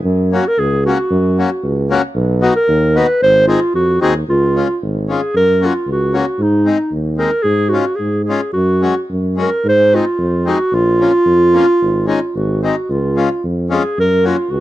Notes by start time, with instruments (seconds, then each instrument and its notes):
0.04 tuba F#2
0.32 accordion A#3 C#4 F#4, clarinet F#4
0.48 clarinet A#4
0.58 tuba C#2, clarinet G#4
0.86 accordion A#3 C#4 F#4, clarinet F#4
1.11 tuba F#2
1.38 accordion A#3 C#4 F#4
1.63 tuba C#2
1.90 accordion A#3 C#4 F#4
2.15 tuba B1
2.41 accordion B3 D#4 F#4, clarinet F#4
2.56 clarinet A#4
2.68 tuba D#2
2.95 accordion B3 D#4 F#4, clarinet B4
3.21 tuba G#1, clarinet C5
3.47 accordion C4 D#4 G#4, clarinet F4
3.74 tuba F2, clarinet F#4
4.01 tuba D#2, accordion C4 D#4 G#4, clarinet F#4
4.28 tuba C#2, clarinet F4
4.55 accordion G#3 C#4 F4
4.82 tuba G#1
5.09 accordion G#3 C#4 F4, clarinet G#4
5.35 tuba F#2, clarinet A#4
5.61 accordion A#3 C#4 F#4
5.65 clarinet F4
5.87 tuba C#2
5.91 clarinet F#4
6.13 accordion A#3 C#4 F#4
6.17 clarinet F#4
6.39 tuba G#2, clarinet D#4
6.65 accordion G#3 C4 D#4
6.91 tuba D#2
7.18 accordion G#3 C4 D#4, clarinet A#4
7.43 tuba G#2, clarinet G#4
7.69 accordion C#4, clarinet F#4
7.73 accordion G#3 F4
7.96 clarinet G#4
8.00 tuba G#2
8.24 clarinet G#4
8.29 accordion G#3 C#4 F4
8.53 tuba F#2, clarinet F#4
8.81 accordion G#3 C#4 F#4
9.10 tuba F#2
9.36 accordion G#3 C#4 F#4
9.42 clarinet A#4
9.64 tuba G#2
9.69 clarinet C5
9.93 accordion G#3 C4 D#4, clarinet F4
10.18 tuba F2
10.45 accordion G#3 C4 D#4, clarinet F#4
10.72 tuba A#1, clarinet F4
11.00 accordion A#3 C#4 F4
11.26 tuba F2
11.53 accordion A#3 C#4 F4
11.81 tuba G#1
12.06 accordion G#3 C#4 D#4, clarinet F4
12.35 tuba G#1, clarinet F#4
12.63 accordion G#3 C4 D#4, clarinet F#4
12.89 tuba C#2, clarinet F4
13.16 accordion G#3 C#4 F4
13.43 tuba F2
13.70 accordion G#3 C#4 F4, clarinet G#4
13.98 tuba F#2, clarinet A#4
14.23 accordion A#3 C#4 F#4, clarinet F4
14.51 tuba C#2, clarinet F#4